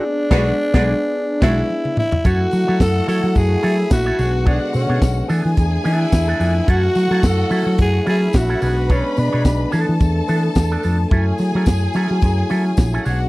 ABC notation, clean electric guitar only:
X:1
M:4/4
L:1/16
Q:"Swing 16ths" 1/4=108
K:F#m
V:1 name="Clean electric guitar"
z2 [DGc]2 z [DGd]2 z3 [DGc]2 z4 | [EAc] z2 [EAc] z2 [EAc] z3 [EAc] z2 [EAc] [DGc] z | [DGc] z2 [DGc] z2 [B,DA] z3 [B,DA] z2 [B,DA] [B,DA] z | [CEA] z2 [CEA] z2 [CEA] z3 [CEA] z2 [CEA] [DGc] z |
[DGc] z2 [DGc] z2 [B,DA] z3 [B,DA] z2 [B,DA] [B,DA] z | [CEA] z2 [CEA] z2 [CEA] z3 [CEA] z2 [CEA] [DGc] z |]